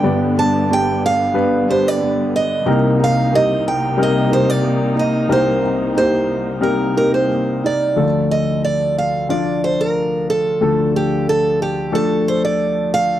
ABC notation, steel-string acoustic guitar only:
X:1
M:4/4
L:1/16
Q:1/4=91
K:Dphr
V:1 name="Steel-string acoustic guitar"
g2 a2 g2 f4 c d3 e2- | e2 f2 e2 g2 e2 c d3 e2 | c4 c4 B2 B c3 d2- | d2 e2 d2 f2 d2 c B3 A2- |
A2 G2 A2 G2 A2 c d3 f2 |]